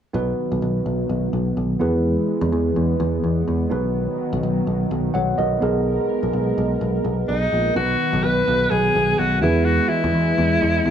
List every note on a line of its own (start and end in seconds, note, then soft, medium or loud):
0.13 0.31 B1 medium
0.13 1.79 D#3 medium
0.13 1.79 F#3 medium
0.13 1.77 B3 medium
0.13 5.58 B3 medium
0.13 1.77 D#4 medium
0.13 1.78 F#4 medium
0.13 1.78 B4 medium
0.52 0.59 B1 medium
0.62 0.79 B1 medium
0.86 1.03 B1 medium
1.09 1.27 B1 medium
1.33 1.50 B1 medium
1.57 1.74 B1 medium
1.79 2.15 E2 medium
1.79 3.70 E3 medium
1.79 3.70 G#3 medium
1.79 3.67 B3 medium
1.79 3.67 E4 medium
1.79 3.68 G#4 medium
1.79 3.68 B4 medium
2.41 2.49 E2 medium
2.52 2.69 E2 medium
2.76 2.93 E2 medium
3.00 3.17 E2 medium
3.24 3.41 E2 medium
3.48 3.65 E2 medium
3.70 4.06 B1 medium
3.70 5.61 D#3 medium
3.70 5.60 F#3 medium
3.70 5.10 B3 medium
3.70 5.11 D#4 medium
3.70 5.11 F#4 medium
3.70 5.12 B4 medium
4.33 4.40 B1 medium
4.43 4.60 B1 medium
4.67 4.84 B1 medium
4.91 5.08 B1 medium
5.14 5.32 B1 medium
5.14 5.37 C#5 soft
5.14 5.37 F#5 medium
5.38 5.55 B1 medium
5.38 5.62 A#4 soft
5.38 5.83 D#5 medium
5.61 5.96 B1 medium
5.61 7.74 G#3 medium
5.61 7.48 B3 medium
5.61 7.74 B3 medium
5.61 7.48 D#4 medium
5.61 7.49 G#4 medium
5.61 7.74 A#4 medium
5.61 7.49 A#4 medium
6.23 6.30 B1 medium
6.33 6.50 B1 medium
6.58 6.75 B1 medium
6.81 6.98 B1 medium
7.05 7.22 B1 medium
7.28 7.46 B1 medium
7.28 7.73 D#4 medium
7.52 7.69 A#1 medium
7.75 7.93 B1 loud
7.75 9.41 D#3 medium
7.75 9.41 F#3 medium
7.75 9.39 B3 medium
7.75 10.90 B3 medium
7.75 9.39 D#4 medium
7.75 8.25 F#4 loud
7.75 9.40 F#4 medium
7.75 9.40 B4 medium
8.13 8.21 B1 loud
8.24 8.41 B1 medium
8.24 8.72 B4 loud
8.48 8.65 B1 medium
8.70 8.88 B1 medium
8.70 9.20 G#4 loud
8.95 9.12 B1 medium
9.19 9.43 B1 medium
9.19 9.41 F#4 medium
9.42 9.77 E2 medium
9.42 10.90 E3 medium
9.42 10.90 G#3 medium
9.42 10.90 B3 medium
9.42 9.66 E4 medium
9.42 10.90 E4 medium
9.42 10.90 G#4 medium
9.42 10.90 B4 medium
9.65 9.90 F#4 medium
9.88 10.90 E4 loud
10.04 10.11 E2 medium
10.14 10.31 E2 medium
10.38 10.55 E2 medium
10.62 10.79 E2 loud
10.86 10.90 E2 medium